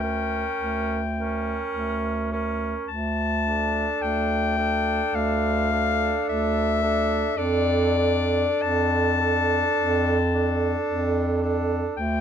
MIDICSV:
0, 0, Header, 1, 5, 480
1, 0, Start_track
1, 0, Key_signature, -1, "minor"
1, 0, Tempo, 1140684
1, 1213, Time_signature, 4, 2, 24, 8
1, 2169, Tempo, 1113173
1, 3129, Tempo, 1234568
1, 3609, Tempo, 1169591
1, 4089, Tempo, 1092896
1, 5152, End_track
2, 0, Start_track
2, 0, Title_t, "Clarinet"
2, 0, Program_c, 0, 71
2, 0, Note_on_c, 0, 79, 92
2, 974, Note_off_c, 0, 79, 0
2, 1213, Note_on_c, 0, 81, 105
2, 1691, Note_on_c, 0, 79, 102
2, 1697, Note_off_c, 0, 81, 0
2, 2168, Note_on_c, 0, 77, 118
2, 2175, Note_off_c, 0, 79, 0
2, 2654, Note_off_c, 0, 77, 0
2, 2658, Note_on_c, 0, 76, 111
2, 3127, Note_on_c, 0, 74, 109
2, 3133, Note_off_c, 0, 76, 0
2, 3610, Note_on_c, 0, 81, 111
2, 3616, Note_off_c, 0, 74, 0
2, 4811, Note_off_c, 0, 81, 0
2, 5049, Note_on_c, 0, 79, 120
2, 5152, Note_off_c, 0, 79, 0
2, 5152, End_track
3, 0, Start_track
3, 0, Title_t, "Alto saxophone"
3, 0, Program_c, 1, 65
3, 12, Note_on_c, 1, 70, 63
3, 429, Note_off_c, 1, 70, 0
3, 501, Note_on_c, 1, 70, 57
3, 969, Note_off_c, 1, 70, 0
3, 982, Note_on_c, 1, 70, 60
3, 1212, Note_off_c, 1, 70, 0
3, 1459, Note_on_c, 1, 69, 57
3, 1922, Note_off_c, 1, 69, 0
3, 1927, Note_on_c, 1, 69, 67
3, 2402, Note_off_c, 1, 69, 0
3, 2417, Note_on_c, 1, 69, 73
3, 2883, Note_off_c, 1, 69, 0
3, 2896, Note_on_c, 1, 69, 68
3, 3126, Note_off_c, 1, 69, 0
3, 3129, Note_on_c, 1, 69, 68
3, 3359, Note_off_c, 1, 69, 0
3, 3366, Note_on_c, 1, 69, 66
3, 3844, Note_off_c, 1, 69, 0
3, 3850, Note_on_c, 1, 69, 72
3, 4263, Note_off_c, 1, 69, 0
3, 4338, Note_on_c, 1, 69, 70
3, 4802, Note_off_c, 1, 69, 0
3, 4817, Note_on_c, 1, 69, 67
3, 5048, Note_off_c, 1, 69, 0
3, 5152, End_track
4, 0, Start_track
4, 0, Title_t, "Tenor saxophone"
4, 0, Program_c, 2, 66
4, 10, Note_on_c, 2, 61, 63
4, 422, Note_off_c, 2, 61, 0
4, 493, Note_on_c, 2, 61, 65
4, 966, Note_off_c, 2, 61, 0
4, 978, Note_on_c, 2, 61, 61
4, 1210, Note_off_c, 2, 61, 0
4, 1453, Note_on_c, 2, 62, 67
4, 1919, Note_off_c, 2, 62, 0
4, 1928, Note_on_c, 2, 62, 71
4, 2403, Note_off_c, 2, 62, 0
4, 2413, Note_on_c, 2, 62, 74
4, 2880, Note_off_c, 2, 62, 0
4, 2886, Note_on_c, 2, 62, 72
4, 3120, Note_off_c, 2, 62, 0
4, 3122, Note_on_c, 2, 62, 70
4, 3355, Note_off_c, 2, 62, 0
4, 3362, Note_on_c, 2, 62, 78
4, 3841, Note_off_c, 2, 62, 0
4, 3849, Note_on_c, 2, 62, 83
4, 4257, Note_off_c, 2, 62, 0
4, 4332, Note_on_c, 2, 62, 83
4, 4799, Note_off_c, 2, 62, 0
4, 4808, Note_on_c, 2, 62, 74
4, 5043, Note_off_c, 2, 62, 0
4, 5152, End_track
5, 0, Start_track
5, 0, Title_t, "Bass clarinet"
5, 0, Program_c, 3, 71
5, 0, Note_on_c, 3, 38, 76
5, 191, Note_off_c, 3, 38, 0
5, 248, Note_on_c, 3, 38, 75
5, 675, Note_off_c, 3, 38, 0
5, 731, Note_on_c, 3, 38, 73
5, 1156, Note_off_c, 3, 38, 0
5, 1213, Note_on_c, 3, 38, 84
5, 1630, Note_off_c, 3, 38, 0
5, 1686, Note_on_c, 3, 38, 80
5, 2110, Note_off_c, 3, 38, 0
5, 2167, Note_on_c, 3, 38, 89
5, 2596, Note_off_c, 3, 38, 0
5, 2657, Note_on_c, 3, 38, 85
5, 3073, Note_off_c, 3, 38, 0
5, 3127, Note_on_c, 3, 41, 94
5, 3551, Note_off_c, 3, 41, 0
5, 3607, Note_on_c, 3, 41, 88
5, 4032, Note_off_c, 3, 41, 0
5, 4090, Note_on_c, 3, 41, 100
5, 4518, Note_off_c, 3, 41, 0
5, 4576, Note_on_c, 3, 41, 93
5, 4994, Note_off_c, 3, 41, 0
5, 5048, Note_on_c, 3, 38, 100
5, 5152, Note_off_c, 3, 38, 0
5, 5152, End_track
0, 0, End_of_file